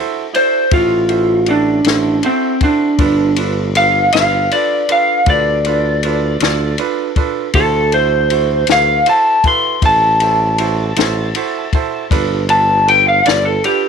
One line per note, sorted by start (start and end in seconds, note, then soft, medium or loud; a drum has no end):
0.00 0.24 E4 medium
0.00 0.24 F#4 medium
0.00 0.24 A4 medium
0.00 0.24 C5 medium
0.33 0.62 E4 soft
0.33 0.62 F#4 soft
0.33 0.63 A4 soft
0.33 0.72 C5 medium
0.33 0.63 D5 medium
0.33 ride medium
0.71 1.82 A1 medium
0.71 1.01 E4 medium
0.71 1.47 F4 medium
0.71 1.01 F#4 medium
0.71 1.01 A4 soft
0.71 1.01 C5 medium
0.71 kick loud
0.71 ride medium
1.09 1.38 E4 soft
1.09 1.38 F#4 soft
1.09 1.38 A4 soft
1.09 1.38 C5 medium
1.09 ride soft
1.46 1.77 E4 medium
1.46 1.76 F#4 soft
1.46 1.77 A4 soft
1.46 1.77 D5 medium
1.46 ride medium
1.50 2.23 D4 medium
1.84 2.20 A1 medium
1.84 2.15 E4 medium
1.84 2.15 F#4 soft
1.84 2.15 A4 soft
1.84 2.15 C5 medium
1.84 snare medium
1.84 ride medium
2.23 2.62 C4 medium
2.23 2.53 E4 medium
2.23 2.53 F#4 soft
2.23 2.53 A4 medium
2.23 2.53 C5 medium
2.23 ride medium
2.61 3.37 D4 medium
2.61 2.91 E4 soft
2.61 2.91 F#4 soft
2.61 2.91 A4 soft
2.61 2.91 C5 medium
2.61 kick medium
2.61 ride medium
2.99 4.09 G1 medium
2.99 3.28 D4 medium
2.99 3.28 F4 medium
2.99 3.28 A4 medium
2.99 3.28 B4 medium
2.99 kick loud
2.99 ride medium
3.36 3.66 D4 medium
3.36 3.66 F4 soft
3.36 3.66 A4 soft
3.36 3.67 B4 medium
3.36 ride medium
3.75 4.04 D4 soft
3.75 4.04 F4 soft
3.75 4.04 A4 soft
3.75 4.04 B4 medium
3.75 4.12 F5 medium
3.75 ride medium
4.12 4.48 G1 medium
4.12 4.42 D4 soft
4.12 4.42 F4 soft
4.12 4.43 A4 soft
4.12 4.43 B4 medium
4.12 4.50 F5 medium
4.12 snare medium
4.12 ride medium
4.51 4.80 D4 medium
4.51 4.80 F4 medium
4.51 4.81 A4 medium
4.51 4.80 B4 medium
4.51 4.89 D5 medium
4.51 ride medium
4.89 5.18 D4 medium
4.89 5.18 F4 soft
4.89 5.18 A4 soft
4.89 5.18 B4 medium
4.89 5.28 F5 medium
4.89 ride medium
5.26 6.37 D2 medium
5.26 5.56 D4 medium
5.26 5.56 F4 soft
5.26 5.56 A4 medium
5.26 5.56 B4 medium
5.26 6.77 D5 medium
5.26 kick loud
5.26 ride medium
5.65 5.95 D4 medium
5.65 5.94 F4 soft
5.65 5.95 A4 soft
5.65 5.94 B4 medium
5.65 ride medium
6.03 6.32 D4 soft
6.03 6.33 F4 medium
6.03 6.32 A4 soft
6.03 6.33 B4 medium
6.03 ride medium
6.40 6.76 D2 medium
6.40 6.70 D4 medium
6.40 6.70 F4 medium
6.40 6.70 A4 medium
6.40 6.70 D5 medium
6.40 snare medium
6.40 ride medium
6.78 7.08 D4 medium
6.78 7.08 F4 medium
6.78 7.08 A4 medium
6.78 7.08 B4 medium
6.78 ride medium
7.16 7.45 D4 medium
7.16 7.46 F4 medium
7.16 7.45 A4 medium
7.16 7.46 B4 medium
7.16 kick medium
7.16 ride medium
7.53 8.65 D2 medium
7.53 7.84 E4 medium
7.53 7.84 F#4 medium
7.53 7.92 A4 medium
7.53 7.84 A4 medium
7.53 7.84 C5 medium
7.53 kick loud
7.53 ride medium
7.92 8.22 E4 soft
7.92 8.22 F#4 soft
7.92 8.23 A4 soft
7.92 8.67 C5 medium
7.92 8.22 C5 medium
7.92 ride medium
8.30 8.60 E4 soft
8.30 8.60 F#4 soft
8.30 8.60 A4 soft
8.30 8.60 C5 soft
8.30 ride medium
8.67 9.04 D2 medium
8.67 8.98 E4 soft
8.67 8.98 F#4 soft
8.67 8.98 A4 soft
8.67 8.98 B4 medium
8.67 snare medium
8.67 ride medium
8.72 9.08 F5 medium
9.06 9.35 E4 medium
9.06 9.36 F#4 medium
9.06 9.36 A4 soft
9.06 9.36 C5 medium
9.06 9.45 A5 medium
9.06 ride medium
9.44 9.74 E4 soft
9.44 9.74 F#4 soft
9.44 9.74 A4 soft
9.44 9.74 B4 medium
9.44 9.83 C6 medium
9.44 kick medium
9.44 ride medium
9.82 10.93 A1 medium
9.82 10.11 E4 soft
9.82 10.11 F#4 soft
9.82 10.12 A4 soft
9.82 10.12 C5 medium
9.82 12.09 A5 medium
9.82 kick loud
9.82 ride medium
10.20 10.50 E4 medium
10.20 10.50 F#4 soft
10.20 10.50 A4 soft
10.20 10.50 C5 medium
10.20 ride medium
10.58 10.88 E4 medium
10.58 10.88 F#4 medium
10.58 10.88 A4 medium
10.58 10.88 C5 medium
10.58 ride medium
10.96 11.32 A1 medium
10.96 11.26 E4 medium
10.96 11.26 F#4 medium
10.96 11.26 A4 medium
10.96 11.26 C5 medium
10.96 snare medium
10.96 ride medium
11.35 11.64 E4 medium
11.35 11.64 F#4 medium
11.35 11.64 A4 medium
11.35 11.64 C5 medium
11.35 11.71 E5 soft
11.35 ride medium
11.73 12.02 E4 medium
11.73 12.02 F#4 soft
11.73 12.03 A4 medium
11.73 12.03 C5 medium
11.73 12.09 A5 soft
11.73 kick medium
11.73 ride soft
12.11 13.21 G1 medium
12.11 12.40 D4 medium
12.11 12.40 F4 medium
12.11 12.40 A4 medium
12.11 12.40 B4 medium
12.11 kick loud
12.11 ride medium
12.48 12.77 D4 medium
12.48 12.78 F4 soft
12.48 12.78 A4 soft
12.48 12.78 B4 medium
12.48 12.87 A5 medium
12.48 ride medium
12.86 13.16 D4 soft
12.86 13.16 F4 soft
12.86 13.16 A4 soft
12.86 13.16 B4 medium
12.86 13.07 G5 medium
12.86 ride medium
13.08 13.26 F5 medium
13.25 13.60 G1 medium
13.25 13.54 D4 soft
13.25 13.54 F4 soft
13.25 13.54 A4 soft
13.25 13.54 B4 medium
13.25 13.45 D5 medium
13.25 snare loud
13.25 ride medium
13.45 13.63 A4 medium
13.64 13.88 D4 medium
13.64 13.88 F4 soft
13.64 13.88 G4 medium
13.64 13.88 A4 medium
13.64 13.88 B4 medium
13.64 ride medium